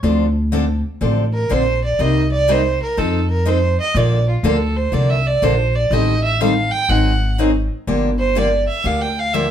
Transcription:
0.03 upright bass D2, steel-string acoustic guitar D3 F3 C4 D4 A4
0.52 steel-string acoustic guitar D3 F3 C4 D4 A4
1.01 upright bass A1, steel-string acoustic guitar D3 F3 C4 D4 A4
1.34 violin A#4
1.49 upright bass A#1, steel-string acoustic guitar D3 F3 C4 D4 A4, violin C5
1.84 violin D5
1.99 upright bass C2, steel-string acoustic guitar C3 G3 A#3 D#4 G4, violin D#5
2.32 violin D5
2.48 steel-string acoustic guitar C3 G3 A#3 D#4 G4, violin C5
2.83 violin A#4
2.97 upright bass F2, steel-string acoustic guitar F3 C4 D#4 A4, violin A4
3.30 violin A#4
3.45 steel-string acoustic guitar F3 C4 D#4 A4, violin C5
3.80 violin D#5
3.94 upright bass A#1, steel-string acoustic guitar D3 F3 A#3 D4 A4, violin D5
4.29 violin F4
4.43 upright bass D2, steel-string acoustic guitar D3 F3 A#3 D4 A4, violin A4
4.76 violin C5
4.92 upright bass C2, steel-string acoustic guitar D3 F3 A#3 D4 A4, violin D5
5.09 violin E5
5.27 violin D5
5.42 upright bass A#1, steel-string acoustic guitar D3 F3 A#3 D4 A4, violin C5
5.75 violin D5
5.91 upright bass A1, steel-string acoustic guitar D#3 G3 C4 G4 A4, violin D#5
6.23 violin E5
6.41 steel-string acoustic guitar D#3 G3 C4 G4 A4, violin F5
6.71 violin G5
6.89 upright bass G#1, steel-string acoustic guitar D#3 F#3 C4 D#4 G#4, violin F#5
7.38 steel-string acoustic guitar D#3 F#3 C4 D#4 G#4
7.87 upright bass G1, steel-string acoustic guitar D3 F3 A#3 D4 G4
8.19 violin C5
8.35 steel-string acoustic guitar D3 F3 A#3 D4 G4, violin D5
8.68 violin E5
8.84 upright bass D2, steel-string acoustic guitar D3 F3 A#3 D4 G4, violin F5
9.02 violin G5
9.19 violin F5
9.33 steel-string acoustic guitar D3 F3 A#3 D4 G4, violin E5

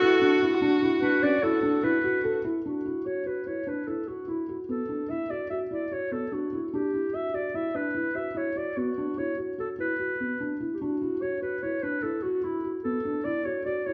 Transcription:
Already playing: viola F#4
0.01 felt piano E4, clarinet A4
0.22 felt piano D4
0.42 felt piano E4
0.62 felt piano D4
0.82 felt piano E4
1.02 felt piano D4, clarinet B4
1.23 felt piano C#4, clarinet D5
1.43 felt piano E4, clarinet A4
1.63 felt piano D4
1.83 felt piano E4, clarinet B4
2.04 felt piano F#4
2.24 felt piano A4
2.45 felt piano E4
2.66 felt piano D4, clarinet F#4
2.85 felt piano E4
3.06 felt piano F#4, clarinet C#5
3.26 felt piano F#4, clarinet B4
3.47 felt piano E4, clarinet C#5
3.67 felt piano D4, clarinet B4
3.88 felt piano E4, clarinet A4
4.08 felt piano F#4, clarinet F#4
4.28 felt piano E4, clarinet E4
4.49 felt piano F#4
4.69 felt piano B3, clarinet A4
4.89 felt piano D4
5.10 felt piano E4, clarinet E5
5.30 clarinet D5
5.50 felt piano F#4, clarinet E5
5.71 felt piano E4, clarinet D5
5.92 felt piano F#4, clarinet C#5
6.11 felt piano B3, clarinet A4
6.32 felt piano D4, clarinet F#4
6.53 felt piano E4
6.73 felt piano D4, clarinet G4
6.94 felt piano E4
7.14 felt piano F#4, clarinet E5
7.34 felt piano F#4, clarinet D5
7.54 felt piano E4, clarinet E5
7.75 felt piano D4, clarinet B4
7.95 felt piano E4
8.15 felt piano F#4, clarinet E5
8.35 felt piano E4, clarinet C#5
8.56 felt piano F#4, clarinet D5
8.77 felt piano B3, clarinet F#4
8.98 felt piano D4
9.18 felt piano E4, clarinet C#5
9.38 felt piano F#4
9.58 felt piano F#4, clarinet A4
9.79 felt piano E4, clarinet B4
9.99 felt piano F#4
10.20 felt piano B3
10.40 felt piano D4
10.60 felt piano E4
10.74 clarinet G4
10.81 felt piano D4, clarinet F#4
11.01 felt piano E4
11.22 felt piano F#4, clarinet C#5
11.42 felt piano F#4, clarinet B4
11.63 felt piano E4, clarinet C#5
11.83 felt piano D4, clarinet B4
12.03 felt piano E4, clarinet A4
12.23 clarinet F#4, felt piano F#4
12.44 clarinet E4, felt piano E4
12.64 felt piano F#4
12.84 felt piano B3, clarinet A4
13.05 felt piano D4
13.25 felt piano E4, clarinet D5
13.45 felt piano F#4, clarinet C#5
13.66 felt piano F#4, clarinet D5
13.86 felt piano E4, clarinet C#5

